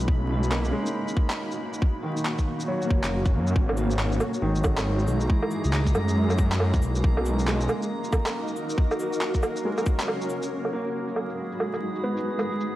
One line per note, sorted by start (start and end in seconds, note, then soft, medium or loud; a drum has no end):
0.00 1.78 B5 medium
0.08 0.72 B1 loud
0.08 1.80 A#3 medium
0.08 1.80 D#4 medium
0.08 5.26 F#4 medium
0.08 kick loud
0.43 shaker medium
0.51 1.75 A#3 medium
0.51 clap loud
0.65 shaker soft
0.69 1.96 G#3 medium
0.69 1.89 C#4 medium
0.83 2.01 D#4 medium
0.83 shaker medium
1.08 shaker soft
1.17 kick loud
1.30 clap loud
1.30 shaker medium
1.52 shaker soft
1.74 shaker medium
1.82 3.54 A#3 medium
1.82 3.54 C#4 medium
1.82 3.54 C#5 medium
1.82 kick loud
2.03 3.27 D#3 medium
2.17 shaker medium
2.25 clap loud
2.39 kick medium
2.39 shaker soft
2.60 shaker medium
2.68 3.73 F#3 medium
2.82 shaker soft
2.87 3.36 F#1 medium
2.87 3.89 A#3 medium
2.87 kick loud
3.04 clap loud
3.04 shaker medium
3.26 kick loud
3.26 shaker soft
3.34 3.54 F#2 medium
3.47 shaker medium
3.55 4.20 G#1 medium
3.55 7.00 G#3 medium
3.55 10.53 A#3 medium
3.55 5.28 D#4 medium
3.55 7.00 G#4 medium
3.55 10.52 A#5 medium
3.55 kick loud
3.69 low woodblock soft
3.77 cabasa medium
3.91 shaker soft
3.99 clap loud
4.12 shaker soft
4.20 cabasa medium
4.20 low woodblock medium
4.34 shaker medium
4.42 4.63 G#1 medium
4.42 5.47 D#3 medium
4.56 shaker soft
4.64 5.07 G#1 medium
4.64 5.47 F#3 medium
4.64 kick loud
4.64 cabasa medium
4.64 low woodblock medium
4.78 clap loud
4.78 low woodblock soft
4.78 shaker medium
4.99 shaker soft
5.08 5.28 B1 medium
5.08 cabasa medium
5.21 shaker medium
5.29 6.53 E3 medium
5.29 7.02 C#4 medium
5.29 7.02 E4 medium
5.29 kick loud
5.42 low woodblock soft
5.51 cabasa medium
5.64 5.94 C#2 medium
5.64 shaker medium
5.73 clap loud
5.87 kick medium
5.87 shaker soft
5.95 6.81 F#2 loud
5.95 cabasa medium
5.95 low woodblock medium
6.08 shaker soft
6.30 low woodblock soft
6.30 shaker soft
6.38 kick loud
6.38 cabasa medium
6.52 clap loud
6.52 shaker medium
6.60 low woodblock soft
6.74 kick loud
6.74 shaker soft
6.82 7.02 B1 medium
6.82 cabasa medium
6.96 shaker medium
7.04 7.68 B1 medium
7.04 8.76 D#4 medium
7.04 10.48 F#4 medium
7.04 10.49 A#4 medium
7.04 8.76 D#5 medium
7.04 kick loud
7.17 low woodblock soft
7.26 cabasa medium
7.39 shaker medium
7.47 8.71 G#3 medium
7.47 clap loud
7.61 shaker soft
7.69 cabasa medium
7.69 low woodblock medium
7.83 shaker medium
8.04 shaker soft
8.13 kick loud
8.13 cabasa medium
8.13 low woodblock medium
8.26 clap medium
8.26 low woodblock soft
8.26 shaker medium
8.48 shaker soft
8.56 cabasa medium
8.70 shaker medium
8.78 10.50 C#4 medium
8.78 10.50 C#5 loud
8.78 kick loud
8.91 low woodblock medium
8.91 shaker soft
9.00 cabasa medium
9.13 shaker medium
9.21 clap loud
9.34 kick medium
9.34 shaker soft
9.43 cabasa medium
9.43 low woodblock medium
9.56 shaker medium
9.65 10.69 G#3 medium
9.78 low woodblock soft
9.78 shaker soft
9.86 kick loud
9.86 cabasa medium
10.00 clap loud
10.00 shaker medium
10.08 low woodblock medium
10.21 shaker soft
10.30 cabasa medium
10.43 shaker medium
10.51 12.76 G#3 medium
10.51 12.24 G#3 medium
10.51 12.24 D#4 medium
10.51 12.24 F#4 medium
10.51 12.76 G#4 medium
10.51 12.24 B5 medium
10.65 low woodblock soft
10.65 shaker soft
10.73 11.96 A#3 medium
10.86 shaker medium
11.08 shaker soft
11.16 low woodblock medium
11.30 shaker medium
11.52 shaker soft
11.60 low woodblock medium
11.74 low woodblock soft
11.74 shaker soft
11.95 shaker soft
12.04 12.44 B3 medium
12.17 shaker medium
12.39 low woodblock soft
12.39 shaker soft
12.61 shaker medium